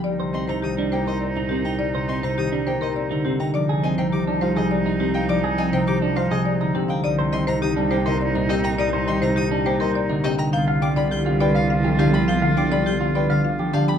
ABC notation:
X:1
M:3/4
L:1/16
Q:1/4=103
K:Cm
V:1 name="Violin"
z2 c' b e' z g e z3 b | z2 c' b e' z g e z3 b | d' z a g d' z f e z3 g | d' z a g d' z f e z3 g |
e' z c' b e' z g e z2 e b | e' z c' b e' z g e z2 e b | g' z d' =b g' z g f z2 f b | g' z d' =b g' z g f z2 f b |]
V:2 name="Marimba"
d z e c G z c B d z G g | d z e c G z c B d z G g | d z e c G z c A d z G f | d z e c G z c A d z G f |
d z e c G z c B d z G g | d z e c G z c B d z G g | f z g d G z d =B f z G =b | f z g d G z d =B f z G =b |]
V:3 name="Clean electric guitar"
z c C E z D G c z E C E | z c C E z D G c z E C E | z A C E z D F A z E C E | z A C E z D F A z E C E |
z c C E z D G c z E C E | z c C E z D G c z E C E | z f D G z F =B f z G D G | z f D G z F =B f z G D G |]
V:4 name="Oboe"
E12- | E8- E3 z | E12- | E8- E3 z |
E12- | E8- E3 z | F12- | F8- F3 z |]
V:5 name="Harp" clef=bass
G, C,2 C, E, G, B, C, C B,, C,2 | G, C,2 C, E, G, B, C, C D, C,2 | F, C,2 C, E, F, G, C, A,2 C,2 | F, C,2 C, E, F, G, C, A, D, C,2 |
G, C, E, C, E, G, B, C, C B,, C,2 | G, C, E, C, E, G, B, C, C D, C,2 | =B, D, G, D, G, B, D D, F F, D, B, | =B, D, G, D, G, B, D D, F F, D, B, |]
V:6 name="Cello" clef=bass
C,,12- | C,,12 | C,,12- | C,,12 |
C,,12- | C,,12 | C,,12- | C,,12 |]